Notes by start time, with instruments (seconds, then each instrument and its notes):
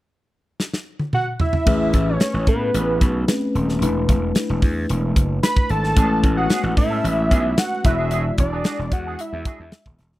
0.60 snare
0.73 snare
0.99 high tom
1.13 analog synth lead F#5, mid tom
1.40 analog synth lead E5, floor tom
1.53 floor tom
1.66 slap bass A1, tine electric piano A3 C#4 G#4 B4, kick, crash
1.93 slap bass A1, kick, closed hi-hat
2.09 analog synth lead C#5
2.20 snare, closed hi-hat
2.34 slap bass A1
2.47 slap bass A2, analog synth lead B4, kick, closed hi-hat
2.74 slap bass A1, closed hi-hat
3.01 slap bass B1, kick, closed hi-hat
3.27 tine electric piano A3 C4 G#4 B4, snare, closed hi-hat
3.34 tine electric piano C#4
3.55 slap bass D#1, closed hi-hat
3.69 snare
3.81 slap bass E1, tine electric piano A3 D4 E4 B4, closed hi-hat
4.09 slap bass E1, kick, closed hi-hat
4.35 snare, closed hi-hat
4.50 slap bass E1
4.62 slap bass E2, kick, open hi-hat
4.89 slap bass E1, closed hi-hat
5.16 slap bass F#1, kick, closed hi-hat
5.43 analog synth lead B5, snare, closed hi-hat
5.57 kick
5.69 slap bass G#1, analog synth lead A5, closed hi-hat
5.84 snare
5.95 slap bass A1, tine electric piano G#3 A3 C#4 A4, clean electric guitar B3 C#4 G#4, kick, closed hi-hat
6.04 tine electric piano B4
6.10 muted clean electric guitar stroke
6.22 slap bass A1, muted clean electric guitar stroke, kick, closed hi-hat
6.36 clean electric guitar B3 C#4 G#4, analog synth lead F#5
6.50 clean electric guitar B3 C#4 G#4, snare, closed hi-hat
6.63 slap bass A1, muted clean electric guitar stroke
6.77 slap bass A2, analog synth lead E5, muted clean electric guitar stroke, kick, open hi-hat
6.90 clean electric guitar B3 C#4 A4
7.04 slap bass A1, closed hi-hat
7.17 muted clean electric guitar stroke
7.31 slap bass B1, clean electric guitar B3 C#4 G#4, kick, closed hi-hat
7.44 muted clean electric guitar stroke
7.58 analog synth lead F#5, muted clean electric guitar stroke, snare, closed hi-hat
7.73 muted clean electric guitar stroke
7.83 slap bass E1, tine electric piano G#3 E4 F#4 C#5, clean electric guitar D4 F#4, analog synth lead E5, kick, closed hi-hat
7.87 clean electric guitar B4
7.92 tine electric piano D5
7.98 clean electric guitar D4 F#4 G#4
8.11 clean electric guitar D4 F#4 G#4, closed hi-hat
8.26 muted clean electric guitar stroke
8.38 slap bass E1, analog synth lead D5, muted clean electric guitar stroke, kick, closed hi-hat
8.52 clean electric guitar D4 F#4 G#4
8.64 clean electric guitar D4 F#4 G#4, snare, closed hi-hat
8.79 slap bass E1, muted clean electric guitar stroke
8.92 slap bass E2, analog synth lead F#5, muted clean electric guitar stroke, kick, closed hi-hat
9.06 clean electric guitar D4 F#4 G#4
9.19 analog synth lead E5, closed hi-hat
9.33 slap bass E2, muted clean electric guitar stroke
9.45 clean electric guitar D4 F#4 G#4, kick, closed hi-hat
9.60 slap bass E2, muted clean electric guitar stroke
9.72 muted clean electric guitar stroke, snare, closed hi-hat
9.86 slap bass D#1, muted clean electric guitar stroke, kick
9.99 slap bass E1, snare, closed hi-hat
10.12 slap bass D#1, muted clean electric guitar stroke, snare